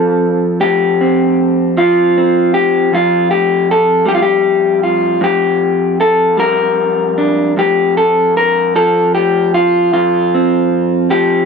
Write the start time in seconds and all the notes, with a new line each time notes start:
Already playing: F2 F3 C4 A4
0.61 F2 G4
1.01 C4
1.77 F3 F4
2.18 C4
2.54 G4
2.93 F2 F4
3.31 G4
3.71 A4
4.06 G3 G4
4.15 F4
4.22 G4
4.83 F4
5.21 F2 G4
6.01 A4
6.37 G3 A#4
7.18 D4
7.57 F2 G4
7.97 A4
8.37 A#4
8.76 F3 A4
9.15 G4
9.54 F4
9.93 F2 F4
10.35 C4
11.10 F3 G4